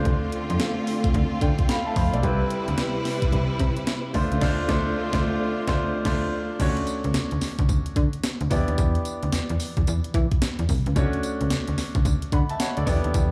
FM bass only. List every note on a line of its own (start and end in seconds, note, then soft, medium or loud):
0.06 0.26 D2 loud
0.50 0.57 F2 loud
1.15 1.27 D2 loud
1.42 1.54 D3 medium
1.96 2.09 F2 medium
2.14 2.21 B1 medium
2.24 2.44 C2 loud
2.68 2.76 D2 medium
3.33 3.45 C2 medium
3.60 3.72 C3 loud
4.15 4.27 D2 loud
4.32 4.39 C#2 medium
4.42 4.61 D2 loud
4.69 4.89 D2 loud
5.13 5.31 D2 loud
5.68 5.85 D2 loud
6.06 6.25 D2 loud
6.60 6.80 D2 loud
7.05 7.12 C#2 loud
7.15 7.22 D2 soft
7.32 7.39 D2 medium
7.59 7.66 D2 loud
7.69 7.82 D2 medium
7.96 8.09 D3 loud
8.41 8.48 D2 medium
8.51 8.64 E2 loud
8.68 8.76 D#2 medium
8.78 8.98 E2 loud
9.23 9.30 D2 medium
9.33 9.40 E2 medium
9.50 9.58 E2 medium
9.77 9.85 E2 medium
9.88 10.00 E2 loud
10.15 10.27 E3 loud
10.59 10.67 E2 medium
10.69 10.82 C2 loud
10.87 10.94 C#2 loud
10.96 11.16 D2 loud
11.41 11.48 C#2 medium
11.51 11.58 D2 medium
11.68 11.76 D2 medium
11.95 12.03 D2 loud
12.05 12.18 D2 loud
12.33 12.45 D3 medium
12.78 12.85 D2 medium
12.87 13.00 E2 loud
13.05 13.12 D#2 medium
13.15 13.31 E2 loud